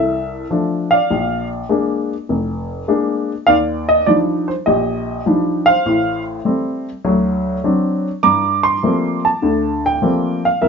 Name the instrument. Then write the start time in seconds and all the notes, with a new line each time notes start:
grand piano
Already playing: C2 A4 E5
0.51 F3 A3 D4
0.91 D5 F5
1.10 A#1
1.69 G#3 A#3 D4
2.29 F1
2.88 G#3 A#3 D4
3.47 D#2 D5 F5
3.89 D#5
4.06 F3 G3 D4 D#4 D5
4.48 C5
4.66 A#1 G4 D#5
5.26 F3 G3 D4 D#4
5.66 C5 F5
5.86 A1 A2
6.45 G3 A3 C4
7.05 D2 F#3
7.64 F#3 C4 D4
8.23 G2 A#5 D6
8.63 C6
8.83 F3 G3 A3 A#3 C4
9.25 A5
9.42 D2 D3
9.86 G5
10.02 F3 G3 A3 A#3 C4
10.45 F5
10.62 C2 A#4 E5